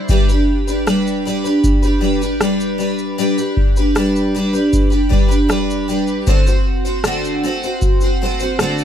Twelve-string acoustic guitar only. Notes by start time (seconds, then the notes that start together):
0.10 G3 D4 G4 B4
0.29 D4 G4 B4
0.67 D4 G4 B4
0.86 G3 D4 G4 B4
1.25 G3 D4 G4 B4
1.44 D4 G4 B4
1.82 D4 G4 B4
2.01 G3 D4 G4 B4
2.21 D4 G4 B4
2.41 G3 D4 G4 B4
2.78 G3 D4 G4 B4
3.18 G3 D4 G4 B4
3.38 D4 G4 B4
3.77 D4 G4 B4
3.95 G3 D4 G4 B4
4.35 G3 D4 G4 B4
4.53 D4 G4 B4
4.90 D4 G4 B4
5.09 G3 D4 G4 B4
5.28 D4 G4 B4
5.49 G3 D4 G4 B4
5.88 G3 D4 G4 B4
6.27 D3 A3 C4 F#4 C5
6.46 C4 F#4 C5
6.85 C4 F#4 C5
7.04 D3 A3 C4 F#4 C5
7.43 A3 C4 F#4 C5
7.63 C4 F#4 C5
8.02 C4 F#4 C5
8.22 A3 C4 F#4 C5
8.40 C4 F#4 C5
8.59 D3 A3 C4 F#4 C5